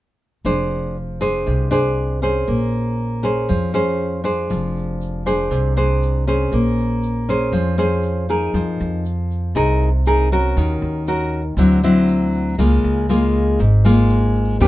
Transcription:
0.45 upright bass F1, nylon-string guitar F3 D4 G#4 C5
1.21 nylon-string guitar D4 G#4 C5
1.46 upright bass C2, nylon-string guitar C3
1.71 nylon-string guitar D4 G#4 C5
2.22 nylon-string guitar C#4 G#4 C5
2.48 upright bass A#1, nylon-string guitar A#3
3.23 nylon-string guitar C#4 G#4 C5
3.49 upright bass F2, nylon-string guitar F3
3.74 nylon-string guitar C#4 G#4 C5
4.24 nylon-string guitar D4 G#4 C5
4.50 upright bass F1, nylon-string guitar F3, shaker
4.77 shaker
5.01 shaker
5.26 nylon-string guitar D4 G#4 C5, shaker
5.50 upright bass C2, nylon-string guitar C3, shaker
5.77 nylon-string guitar D4 G#4 C5, shaker
6.03 shaker
6.27 nylon-string guitar C#4 G#4 C5, shaker
6.52 upright bass A#1, nylon-string guitar A#3, shaker
6.78 shaker
7.03 shaker
7.29 nylon-string guitar C#4 G#4 C5, shaker
7.52 upright bass F2, nylon-string guitar F3, shaker
7.78 nylon-string guitar C#4 G#4 C5, shaker
8.03 shaker
8.29 nylon-string guitar D#4 G#4 A#4, shaker
8.54 upright bass F2, nylon-string guitar F3, shaker
8.80 upright bass F2, shaker
9.06 shaker
9.31 shaker
9.55 upright bass C2, nylon-string guitar C3 D#4 G#4 A#4, shaker
9.81 shaker
10.06 nylon-string guitar D#4 G#4 A#4, shaker
10.32 nylon-string guitar C#4 F#4 A#4, shaker
10.57 upright bass D#2, nylon-string guitar D#3, shaker
10.82 upright bass D#2, shaker
11.07 nylon-string guitar C#4 F#4 A#4, shaker
11.32 shaker
11.57 upright bass D2, nylon-string guitar D3 F#3 C4 E4, shaker
11.83 nylon-string guitar F#3 C4 E4, shaker
12.08 shaker
12.33 shaker
12.58 upright bass C#2, nylon-string guitar C#3 G#3 A#3 F4, shaker
12.84 upright bass C#2, shaker
13.09 nylon-string guitar G#3 A#3 F4, shaker
13.35 shaker
13.59 upright bass G#1, nylon-string guitar G#2, shaker
13.85 nylon-string guitar G#3 A#3 F4, shaker
14.10 shaker
14.35 shaker
14.60 upright bass D#2, nylon-string guitar D#3 B3 C#4 G4, shaker

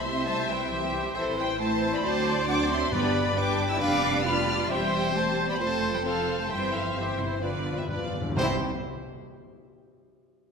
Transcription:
Already playing: double bass section C2, french horn section G3 E4, trumpet C5, violin section E5
0.05 viola section G3 E4, cello section C4, flute section E5, violin section C6
0.17 viola section C4 G4
0.27 viola section G3 E4, cello section A3, flute section C5, violin section A5
0.39 viola section C4 G4
0.49 cello section G3, viola section G3 E4, flute section B4, violin section G5
0.61 viola section C4 G4
0.71 cello section E3, viola section G3 E4, flute section G4, violin section E5
0.83 viola section C4 G4
0.94 viola section G3 E4
1.05 viola section C4 G4
1.15 double bass section A1, cello section E3, french horn section E3 E4, viola section C4 E4, flute section A4, violin section C5 E5, trumpet C5
1.37 cello section G3, flute section B4, violin section G5
1.59 french horn section E3 E4, cello section A3, viola section C4 E4, flute section C5, trumpet C5, violin section A5
1.93 cello section B3, flute section D5, violin section B5
2.03 double bass section D2, french horn section F#3 D4, cello section A3, viola section C4 F#4, trumpet C5, flute section C5, violin section D5 A5
2.48 french horn section F#3 D4, viola section C4 F#4, cello section D4, trumpet C5, flute section F#5, violin section D6
2.70 cello section C4, flute section E5, violin section C6
2.91 double bass section G1, timpani G2, french horn section G3 D4, cello section B3, viola section D4 G4, trumpet B4, violin section D5 B5, flute section D5
3.36 french horn section G3 D4, cello section D4, viola section D4 G4, trumpet B4, violin section B4 D6, flute section G5
3.69 cello section E4, flute section G5, violin section E6
3.79 double bass section F1, french horn section G3 D4, viola section B3 G4, cello section D4, trumpet B4, violin section D5 D6, flute section F5
4.24 french horn section G3 D4, viola section B3 G4, cello section F4, trumpet B4, violin section D5 F6, flute section B5
4.69 double bass section E1, cello section G3, french horn section G3 C4, viola section C4 G4, trumpet C5, flute section C5, violin section E5 G5
5.14 cello section A3, flute section C5, violin section C5 A5
5.48 cello section B3, flute section D5, violin section B5
5.59 double bass section F1, french horn section F3 C4, cello section A3, viola section C4 F4, violin section A4 A5, flute section C5, trumpet C5
5.93 cello section G3, flute section B4, violin section G5
6.04 cello section F3, french horn section F3 C4, viola section C4 F4, flute section A4, trumpet C5, violin section F5
6.39 cello section A3, flute section C5, violin section A5
6.50 double bass section G1, french horn section E3 C4, cello section G3, viola section C4 E4, flute section C5, trumpet C5, violin section E5 G5
6.73 cello section F3, flute section A4, violin section F5
6.96 cello section E3, french horn section E3 C4, viola section C4 E4, flute section G4, trumpet C5, violin section C5 E5
7.19 cello section C3, flute section E4, violin section C5
7.41 timpani G2, cello section D3, french horn section F3 D4, viola section B3 F4, flute section F4, trumpet B4, violin section B4 D5
7.50 timpani G2
7.57 timpani G2
7.65 timpani G2
7.73 timpani G2, cello section E3, flute section G4
7.77 timpani G2, violin section E5
7.88 timpani G2, cello section D3, french horn section F3 D4, viola section B3 F4, flute section F4, trumpet B4, violin section B4 D5
7.97 timpani G2
8.04 timpani G2
8.13 timpani G2
8.21 timpani G2
8.29 timpani G2
8.37 double bass section C2, timpani C3, french horn section G3 E4, viola section C4 E4, cello section C4, violin section E4 G4 C5, flute section C5, trumpet C5

